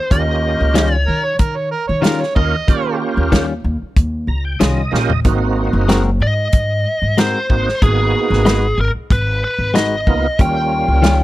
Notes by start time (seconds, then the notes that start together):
Already playing: C5
0.10 D#2 A#3 C#4 F4 G4 D#5, kick, closed hi-hat
0.61 C#2
0.74 D#3 G3 C#4 F4, snare, closed hi-hat
0.96 C#5
1.08 D#3 A#4
1.24 C#5
1.39 D#3 A#4, kick, closed hi-hat
1.56 C#5
1.71 A#4
1.88 D#3 C#5
2.02 D#3 G3 C#4 F4 A#4, snare, closed hi-hat
2.21 C#5, snare
2.35 D#2 A#3 C#4 F4 A#4 D#5, kick
2.67 D#3 A#3 C#4 F4 G4, kick, closed hi-hat
3.17 D#2
3.32 D#3 G3 C#4 F4, kick, snare, closed hi-hat
3.64 D#2
3.82 muted upright bass stroke
3.96 D#2, kick, closed hi-hat
4.27 C#2 A#5
4.45 G5
4.59 C2 D#3 G3 C#4 F4 D#5, snare, closed hi-hat
4.91 A#1 A#3 C#4 F4 G4, snare
5.10 floor tom
5.25 G#1 A#3 C4 D#4 F#4, kick, closed hi-hat
5.73 F#1
5.89 G#3 C4 F#4 A#4, snare, closed hi-hat
6.20 G#2 D#5
6.52 G#2, kick, closed hi-hat
7.02 G#2
7.18 G#3 C4 F#4 A#4 C5, snare, closed hi-hat
7.49 G#1 A#3 C4 D#4 F#4, kick
7.69 snare
7.82 G#1 A#3 B3 D#4 F#4 G#4, kick, closed hi-hat
8.30 G#1, snare
8.45 G#3 D#4 F#4 B4, snare, closed hi-hat
8.78 G#1 A#4
8.95 muted upright bass stroke
9.10 G#1 B4, kick, closed hi-hat
9.44 B4
9.58 G#1
9.74 G#3 D#4 F#4 B4 D#5, snare, closed hi-hat
10.07 C#2 A#3 B3 D#4 F4, kick
10.39 D#2 G3 A#3 C#4 F4 G5, kick, closed hi-hat
10.88 C#2
11.02 D#3 G3 C#4 F4, snare, closed hi-hat